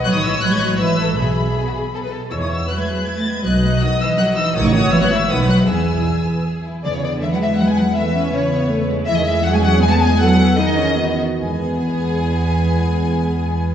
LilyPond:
<<
  \new Staff \with { instrumentName = "Violin section" } { \time 3/4 \key e \major \tempo 4 = 158 fis'''16 dis'''16 e'''8 fis'''16 gis'''16 fis'''8 e'''4 | b''2~ b''8 r8 | e'''16 dis'''16 e'''8 fis'''16 gis'''16 fis'''8 gis'''16 a'''16 gis'''8 | fis'''4 dis'''8 e'''8 fis'''8 e'''8 |
dis'''16 cis'''16 dis'''8 e'''16 fis'''16 e'''8 dis'''8 fis'''8 | e'''2 r4 | d''16 cis''16 d''8 e''16 fis''16 e''8 fis''16 gis''16 fis''8 | e''4 cis''4. r8 |
e''16 dis''16 e''8 fis''16 gis''16 fis''8 gis''16 a''16 gis''8 | fis''4 dis''4. r8 | gis''2.~ | gis''2. | }
  \new Staff \with { instrumentName = "Violin section" } { \time 3/4 \key e \major << { dis''4 dis''4 e''4 | e''4 gis'16 fis'16 gis'8 a'16 b'16 a'8 | e''2. | dis''2. |
fis''4 e''4 fis''4 | gis''2~ gis''8 r8 | d''16 cis''16 d''8 e''16 fis''16 e''8 fis''16 gis''16 fis''8 | e''4 cis''4. r8 |
e''16 dis''16 e''8 fis''16 gis''16 fis''8 gis''16 a''16 gis''8 | fis''4 dis''4. r8 | gis'2.~ | gis'2. | } \\ { b'4 b'4 b'8 a'8 | gis'4 r2 | gis8 b8 e'8 gis'8 e'8 b8 | b8 dis'8 fis'8 b'8 fis'8 dis'8 |
dis'8 fis'8 b8 e'8 b8 dis'8 | b8 e'8 gis'8 b'8 gis'8 e'8 | r2. | r2. |
r2. | r2. | r2. | r2. | } >> }
  \new Staff \with { instrumentName = "Viola section" } { \time 3/4 \key e \major << { cis''2 b'4 | gis'2~ gis'8 r8 | cis''4 b'2 | dis''2. |
cis''2 b'4 | gis'2~ gis'8 r8 | gis'4 b'4 b'4~ | b'2. |
gis'4 gis'2 | a'8 a'8 gis'4 fis'8 r8 | gis'2.~ | gis'2. | } \\ { r2. | r2. | r2. | r2. |
r2. | r2. | b4 gis2 | a8 cis'8 cis'8 b8 a8 gis8~ |
gis4 cis'4 b4 | b4 dis'8 cis'8 b8 r8 | b2.~ | b2. | } >> }
  \new Staff \with { instrumentName = "Cello section" } { \clef bass \time 3/4 \key e \major fis16 dis16 e8 fis16 gis16 fis8 e4 | b,2~ b,8 r8 | e16 dis16 e8 fis16 gis16 fis8 gis16 a16 gis8 | fis4 dis8 e8 fis8 e8 |
dis16 cis16 dis8 e16 fis16 e8 dis8 fis8 | e2 r4 | d16 cis16 d8 e16 fis16 e8 fis16 gis16 fis8 | e4 cis4. r8 |
e16 dis16 e8 fis16 gis16 fis8 gis16 a16 gis8 | fis4 dis4. r8 | gis2.~ | gis2. | }
  \new Staff \with { instrumentName = "Double bass section" } { \clef bass \time 3/4 \key e \major a,,2 gis,,4 | b,,2~ b,,8 r8 | e,4 r2 | b,,4 r2 |
a,,4 gis,,4 b,,4 | e,4 r2 | e,2.~ | e,2. |
e,2.~ | e,2~ e,8 r8 | e,2.~ | e,2. | }
>>